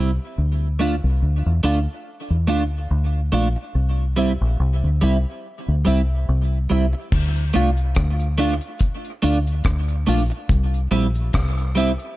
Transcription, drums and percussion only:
7.12 kick, crash, cabasa
7.36 closed hi-hat
7.54 closed hi-hat, cabasa
7.77 closed hi-hat, cabasa
7.95 kick, cross-stick, closed hi-hat
8.20 closed hi-hat, cabasa
8.38 closed hi-hat, cabasa
8.61 closed hi-hat
8.79 kick, closed hi-hat, cabasa
9.05 closed hi-hat
9.23 closed hi-hat, cabasa
9.47 closed hi-hat, cabasa
9.64 kick, cross-stick, closed hi-hat
9.88 closed hi-hat, cabasa
10.07 open hi-hat, cabasa
10.31 closed hi-hat
10.49 kick, closed hi-hat, cabasa
10.74 closed hi-hat
10.92 closed hi-hat, cabasa
11.15 closed hi-hat, cabasa
11.33 kick, cross-stick, closed hi-hat
11.57 closed hi-hat, cabasa
11.75 closed hi-hat, cabasa
11.99 closed hi-hat

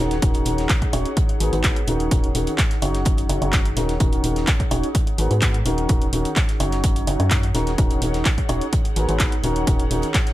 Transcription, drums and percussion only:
0.11 snare, closed hi-hat
0.22 kick, closed hi-hat
0.34 closed hi-hat
0.46 closed hi-hat, open hi-hat
0.58 snare, closed hi-hat
0.69 kick, snare, clap, closed hi-hat
0.82 kick, closed hi-hat
0.93 closed hi-hat, open hi-hat
1.06 closed hi-hat
1.17 kick, closed hi-hat
1.29 closed hi-hat
1.40 closed hi-hat, open hi-hat
1.53 closed hi-hat
1.64 kick, snare, clap, closed hi-hat
1.76 closed hi-hat
1.87 closed hi-hat, open hi-hat
2.00 closed hi-hat
2.11 kick, closed hi-hat
2.24 closed hi-hat
2.35 closed hi-hat, open hi-hat
2.47 closed hi-hat
2.57 kick, snare, clap, closed hi-hat
2.71 snare, closed hi-hat
2.82 closed hi-hat, open hi-hat
2.94 snare, closed hi-hat
3.05 kick, closed hi-hat
3.18 closed hi-hat
3.29 closed hi-hat, open hi-hat
3.42 closed hi-hat
3.53 kick, snare, clap, closed hi-hat
3.65 closed hi-hat
3.76 snare, closed hi-hat, open hi-hat
3.89 snare, closed hi-hat
4.00 kick, closed hi-hat
4.12 closed hi-hat
4.24 closed hi-hat, open hi-hat
4.36 snare, closed hi-hat
4.47 kick, snare, clap, closed hi-hat
4.60 kick, closed hi-hat
4.71 closed hi-hat, open hi-hat
4.84 closed hi-hat
4.95 kick, closed hi-hat
5.07 closed hi-hat
5.18 closed hi-hat, open hi-hat
5.31 closed hi-hat
5.42 kick, snare, clap, closed hi-hat
5.54 closed hi-hat
5.66 closed hi-hat, open hi-hat
5.78 closed hi-hat
5.89 kick, closed hi-hat
6.02 closed hi-hat
6.13 closed hi-hat, open hi-hat
6.25 closed hi-hat
6.36 kick, snare, clap, closed hi-hat
6.49 snare, closed hi-hat
6.60 closed hi-hat, open hi-hat
6.71 snare, closed hi-hat
6.84 kick, closed hi-hat
6.96 closed hi-hat
7.07 closed hi-hat, open hi-hat
7.20 closed hi-hat
7.31 kick, snare, clap, closed hi-hat
7.43 closed hi-hat
7.54 snare, closed hi-hat, open hi-hat
7.67 snare, closed hi-hat
7.78 kick, closed hi-hat
7.90 closed hi-hat
8.02 closed hi-hat, open hi-hat
8.13 snare, closed hi-hat
8.25 kick, snare, clap, closed hi-hat
8.38 kick, closed hi-hat
8.49 closed hi-hat, open hi-hat
8.61 closed hi-hat
8.73 kick, closed hi-hat
8.85 closed hi-hat
8.96 closed hi-hat, open hi-hat
9.09 closed hi-hat
9.20 kick, snare, clap, closed hi-hat
9.32 closed hi-hat
9.44 closed hi-hat, open hi-hat
9.56 closed hi-hat
9.67 kick, closed hi-hat
9.80 closed hi-hat
9.91 closed hi-hat, open hi-hat
10.02 closed hi-hat
10.14 kick, snare, clap, closed hi-hat
10.27 snare, closed hi-hat

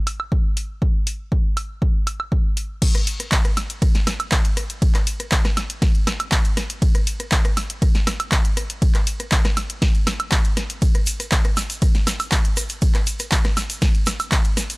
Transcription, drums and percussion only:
0.07 open hi-hat, high woodblock
0.20 high woodblock
0.32 kick
0.57 open hi-hat
0.82 kick
1.07 open hi-hat
1.32 kick
1.57 open hi-hat, high woodblock
1.82 kick
2.07 open hi-hat, high woodblock
2.20 high woodblock
2.32 kick
2.57 open hi-hat
2.82 kick, crash, ride
2.95 cross-stick, closed hi-hat
3.07 open hi-hat
3.20 cross-stick, closed hi-hat
3.32 kick, clap, ride
3.45 cross-stick, closed hi-hat
3.57 snare, open hi-hat, high woodblock
3.70 closed hi-hat
3.82 kick, cross-stick, ride
3.95 snare, closed hi-hat
4.07 cross-stick, snare, open hi-hat, high woodblock
4.20 closed hi-hat, high woodblock
4.32 kick, cross-stick, clap, ride
4.45 closed hi-hat
4.57 cross-stick, open hi-hat
4.70 closed hi-hat
4.82 kick, ride
4.95 cross-stick, clap, closed hi-hat
5.07 open hi-hat
5.20 cross-stick, closed hi-hat
5.32 kick, clap, ride
5.45 cross-stick, snare, closed hi-hat
5.57 snare, open hi-hat, high woodblock
5.70 closed hi-hat
5.82 kick, cross-stick, snare, ride
5.95 closed hi-hat
6.07 cross-stick, snare, open hi-hat, high woodblock
6.20 closed hi-hat, high woodblock
6.32 kick, cross-stick, clap, ride
6.45 closed hi-hat
6.57 cross-stick, snare, open hi-hat
6.70 closed hi-hat
6.82 kick, ride
6.95 cross-stick, closed hi-hat
7.07 open hi-hat
7.20 cross-stick, closed hi-hat
7.32 kick, clap, ride
7.45 cross-stick, closed hi-hat
7.57 snare, open hi-hat, high woodblock
7.70 closed hi-hat
7.82 kick, cross-stick, ride
7.95 snare, closed hi-hat
8.07 cross-stick, snare, open hi-hat, high woodblock
8.20 closed hi-hat, high woodblock
8.32 kick, cross-stick, clap, ride
8.45 closed hi-hat
8.57 cross-stick, open hi-hat
8.70 closed hi-hat
8.82 kick, ride
8.95 cross-stick, clap, closed hi-hat
9.07 open hi-hat
9.20 cross-stick, closed hi-hat
9.32 kick, clap, ride
9.45 cross-stick, snare, closed hi-hat
9.57 snare, open hi-hat, high woodblock
9.70 closed hi-hat
9.82 kick, cross-stick, snare, ride
9.95 closed hi-hat
10.07 cross-stick, snare, open hi-hat, high woodblock
10.20 closed hi-hat, high woodblock
10.32 kick, cross-stick, clap, ride
10.45 closed hi-hat
10.57 cross-stick, snare, open hi-hat
10.70 closed hi-hat
10.82 kick, ride, shaker
10.95 cross-stick, closed hi-hat
11.06 open hi-hat, shaker
11.20 cross-stick, closed hi-hat, shaker
11.32 kick, clap, ride, shaker
11.45 cross-stick, closed hi-hat
11.57 snare, open hi-hat, high woodblock, shaker
11.70 closed hi-hat, shaker
11.82 kick, cross-stick, ride, shaker
11.95 snare, closed hi-hat
12.07 cross-stick, snare, open hi-hat, high woodblock, shaker
12.20 closed hi-hat, high woodblock, shaker
12.32 kick, cross-stick, clap, ride, shaker
12.45 closed hi-hat
12.57 cross-stick, open hi-hat, shaker
12.69 closed hi-hat, shaker
12.82 kick, ride, shaker
12.94 cross-stick, clap, closed hi-hat
13.07 open hi-hat, shaker
13.19 cross-stick, closed hi-hat, shaker
13.32 kick, clap, ride, shaker
13.45 cross-stick, snare, closed hi-hat
13.57 snare, open hi-hat, high woodblock, shaker
13.70 closed hi-hat, shaker
13.82 kick, cross-stick, snare, ride, shaker
13.95 closed hi-hat
14.06 cross-stick, snare, open hi-hat, high woodblock, shaker
14.20 closed hi-hat, high woodblock, shaker
14.31 kick, cross-stick, clap, ride, shaker
14.45 closed hi-hat
14.57 cross-stick, snare, open hi-hat, shaker
14.70 closed hi-hat, shaker

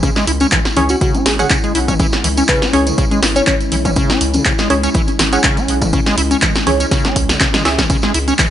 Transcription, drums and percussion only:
0.03 kick, closed hi-hat, tambourine, high conga
0.16 snare, tambourine
0.27 open hi-hat
0.40 closed hi-hat, tambourine, high conga
0.52 kick, clap, closed hi-hat, tambourine
0.65 snare, tambourine
0.77 open hi-hat, high conga
0.89 closed hi-hat, tambourine
1.01 kick, closed hi-hat, tambourine
1.15 closed hi-hat, tambourine, high conga
1.26 snare, open hi-hat
1.39 closed hi-hat, tambourine
1.50 kick, clap, closed hi-hat, tambourine, high conga
1.64 closed hi-hat, tambourine
1.75 open hi-hat
1.88 kick, closed hi-hat, mid tom, tambourine
1.99 kick, closed hi-hat, tambourine, high conga
2.12 snare, tambourine
2.24 open hi-hat
2.37 closed hi-hat, tambourine, high conga
2.48 kick, clap, closed hi-hat, tambourine
2.62 snare, tambourine
2.73 open hi-hat, high conga
2.87 closed hi-hat, tambourine
2.98 kick, closed hi-hat, tambourine
3.11 closed hi-hat, tambourine, high conga
3.23 snare, open hi-hat
3.36 closed hi-hat, tambourine
3.47 kick, clap, closed hi-hat, tambourine, high conga
3.61 closed hi-hat, tambourine
3.72 open hi-hat
3.85 kick, closed hi-hat, mid tom, tambourine
3.96 kick, closed hi-hat, tambourine, high conga
4.10 snare, tambourine
4.21 open hi-hat
4.34 closed hi-hat, tambourine, high conga
4.45 kick, clap, closed hi-hat, tambourine
4.58 snare, tambourine
4.70 open hi-hat, high conga
4.83 closed hi-hat, tambourine
4.94 kick, closed hi-hat, tambourine
5.08 closed hi-hat, tambourine, high conga
5.19 snare, open hi-hat
5.33 closed hi-hat, tambourine
5.44 kick, clap, closed hi-hat, tambourine, high conga
5.57 closed hi-hat, tambourine
5.68 open hi-hat
5.81 kick, closed hi-hat, mid tom, tambourine
5.93 kick, closed hi-hat, tambourine, high conga
6.06 snare, closed hi-hat, tambourine
6.18 open hi-hat
6.31 closed hi-hat, tambourine, high conga
6.42 kick, clap, closed hi-hat, mid tom, tambourine
6.55 snare, closed hi-hat, tambourine
6.67 open hi-hat, high conga
6.80 closed hi-hat, tambourine
6.91 kick, snare, closed hi-hat, tambourine
7.05 snare, closed hi-hat, tambourine, high conga
7.16 kick, open hi-hat
7.29 snare, closed hi-hat, tambourine
7.40 kick, snare, clap, closed hi-hat, tambourine, high conga
7.54 snare, closed hi-hat, mid tom, tambourine
7.65 snare, open hi-hat
7.78 kick, snare, closed hi-hat, mid tom, tambourine
7.90 kick, closed hi-hat, tambourine, high conga
8.02 snare, tambourine
8.14 open hi-hat
8.28 closed hi-hat, tambourine, high conga
8.39 kick, clap, closed hi-hat, tambourine

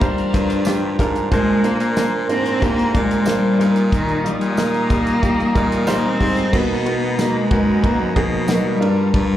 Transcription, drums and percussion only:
0.01 kick, closed hi-hat
0.18 closed hi-hat
0.34 kick, closed hi-hat
0.50 closed hi-hat
0.65 snare, closed hi-hat, tambourine
0.99 kick, closed hi-hat
1.16 closed hi-hat
1.32 kick, closed hi-hat
1.64 closed hi-hat
1.80 closed hi-hat
1.97 snare, closed hi-hat, tambourine
2.29 closed hi-hat
2.46 closed hi-hat
2.62 kick, closed hi-hat
2.79 closed hi-hat
2.95 kick, closed hi-hat
3.11 closed hi-hat
3.26 snare, closed hi-hat, tambourine
3.61 closed hi-hat
3.76 closed hi-hat
3.92 kick, closed hi-hat
4.09 closed hi-hat
4.26 closed hi-hat
4.41 closed hi-hat
4.57 snare, closed hi-hat, tambourine
4.74 closed hi-hat
4.90 kick, closed hi-hat
5.07 closed hi-hat
5.23 kick, closed hi-hat
5.40 closed hi-hat
5.56 kick, closed hi-hat
5.72 closed hi-hat
5.87 snare, closed hi-hat, tambourine
6.21 kick, open hi-hat
6.37 closed hi-hat
6.53 kick, crash
6.86 ride
7.19 snare, ride, tambourine
7.51 kick, ride
7.84 kick, ride
8.16 kick, ride
8.48 snare, ride, tambourine
8.82 ride
9.14 kick, ride

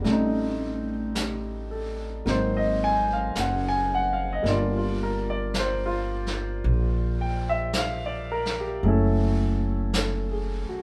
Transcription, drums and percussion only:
0.05 brush sweep, snare
1.15 brush sweep, snare, hi-hat pedal
2.26 brush sweep, snare
3.35 brush sweep, snare, hi-hat pedal
4.45 brush sweep, snare
5.54 brush sweep, snare, hi-hat pedal
6.26 snare
6.63 brush sweep
7.73 brush sweep, snare, hi-hat pedal
8.45 snare
8.83 brush sweep
9.93 brush sweep, snare, hi-hat pedal

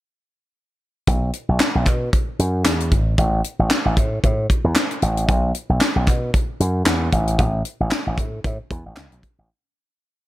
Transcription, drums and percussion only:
1.07 kick, closed hi-hat
1.33 closed hi-hat
1.60 snare, clap, closed hi-hat
1.86 kick, clap, closed hi-hat
2.13 kick, closed hi-hat
2.39 closed hi-hat
2.65 snare, clap, closed hi-hat
2.80 closed hi-hat
2.92 kick, closed hi-hat
3.18 kick, closed hi-hat
3.44 closed hi-hat
3.71 snare, clap, closed hi-hat
3.97 kick, closed hi-hat
4.24 kick, closed hi-hat
4.50 kick, closed hi-hat
4.75 snare, clap, closed hi-hat
4.91 closed hi-hat
5.02 closed hi-hat
5.17 closed hi-hat
5.29 kick, closed hi-hat
5.55 closed hi-hat
5.81 snare, clap, closed hi-hat
6.07 kick, clap, closed hi-hat
6.34 kick, closed hi-hat
6.60 closed hi-hat
6.86 snare, clap, closed hi-hat
7.12 kick, closed hi-hat
7.28 closed hi-hat
7.39 kick, closed hi-hat
7.65 closed hi-hat
7.91 snare, clap, closed hi-hat
8.18 kick, closed hi-hat
8.44 kick, closed hi-hat
8.71 kick, closed hi-hat
8.96 snare, clap, closed hi-hat
9.12 closed hi-hat
9.23 kick, closed hi-hat

